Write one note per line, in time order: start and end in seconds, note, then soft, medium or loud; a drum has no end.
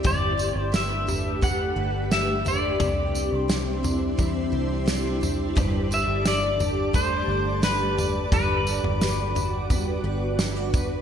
0.00 3.53 G3 medium
0.00 0.11 C4 medium
0.00 0.37 D4 medium
0.00 1.07 G4 medium
0.00 2.76 G4 medium
0.00 0.71 B4 medium
0.04 0.54 G1 loud
0.04 2.78 A3 medium
0.04 11.02 D4 medium
0.04 2.77 B4 medium
0.04 0.59 D5 medium
0.04 kick loud
0.04 floor tom loud
0.04 tambourine medium
0.37 3.18 D4 medium
0.37 tambourine medium
0.55 1.73 G1 loud
0.55 0.75 C5 medium
0.72 1.75 B4 medium
0.72 1.43 E5 loud
0.72 snare loud
0.72 tambourine loud
1.07 2.10 G4 medium
1.07 floor tom medium
1.07 tambourine medium
1.41 2.87 A3 medium
1.41 2.12 F#5 loud
1.41 kick medium
1.41 floor tom medium
1.41 tambourine medium
1.76 2.76 G1 loud
1.76 2.43 B4 medium
2.11 2.80 G4 medium
2.11 2.48 E5 loud
2.11 snare loud
2.11 tambourine medium
2.45 2.87 B4 medium
2.45 3.38 D5 medium
2.45 floor tom medium
2.45 tambourine medium
2.79 3.29 C2 loud
2.79 5.56 C3 medium
2.79 11.02 G3 medium
2.79 5.53 E4 medium
2.79 3.48 G4 medium
2.79 5.53 C5 medium
2.79 kick loud
2.79 floor tom loud
2.79 tambourine medium
3.15 5.63 C4 medium
3.15 tambourine medium
3.32 4.49 C2 loud
3.38 3.81 C5 medium
3.48 4.52 G4 medium
3.48 snare loud
3.48 tambourine loud
3.83 4.85 D4 medium
3.83 floor tom medium
3.83 tambourine medium
4.17 5.55 E3 medium
4.17 kick medium
4.17 floor tom medium
4.17 tambourine medium
4.52 5.52 C2 loud
4.52 5.21 G4 medium
4.86 5.90 D4 medium
4.86 snare loud
4.86 tambourine medium
5.21 6.59 G4 medium
5.21 floor tom medium
5.21 tambourine medium
5.55 6.06 G1 loud
5.55 8.32 G3 medium
5.55 8.29 A4 medium
5.55 6.96 B4 medium
5.55 11.02 D5 medium
5.55 kick loud
5.55 floor tom loud
5.55 tambourine medium
5.91 8.66 D4 medium
5.91 6.27 E5 loud
5.91 tambourine medium
6.07 7.24 G1 loud
6.25 6.95 D5 loud
6.25 snare loud
6.25 tambourine loud
6.59 7.62 G4 medium
6.59 floor tom medium
6.59 tambourine medium
6.93 8.39 A3 medium
6.93 7.63 C5 medium
6.93 kick medium
6.93 floor tom medium
6.93 tambourine medium
7.28 8.28 G1 medium
7.62 9.35 G4 medium
7.62 8.29 B4 loud
7.62 snare loud
7.62 tambourine loud
7.97 8.32 B4 medium
7.97 floor tom medium
7.97 tambourine medium
8.32 8.81 G1 loud
8.32 11.02 G3 medium
8.32 11.02 F#4 medium
8.32 9.00 B4 medium
8.32 9.86 B4 medium
8.32 kick loud
8.32 floor tom loud
8.32 tambourine medium
8.66 11.02 D4 medium
8.66 tambourine medium
8.83 10.00 G1 loud
8.83 floor tom medium
9.01 10.03 B4 medium
9.01 snare loud
9.01 tambourine loud
9.35 10.39 F#4 medium
9.35 floor tom medium
9.35 tambourine medium
9.70 11.02 B3 medium
9.70 kick medium
9.70 floor tom medium
9.70 tambourine medium
9.86 10.70 A4 medium
10.04 11.02 G1 loud
10.04 10.73 B4 medium
10.39 10.56 E4 medium
10.39 snare loud
10.39 tambourine loud
10.56 11.02 F#4 medium
10.73 11.02 B4 medium
10.73 kick loud
10.73 floor tom medium
10.73 tambourine medium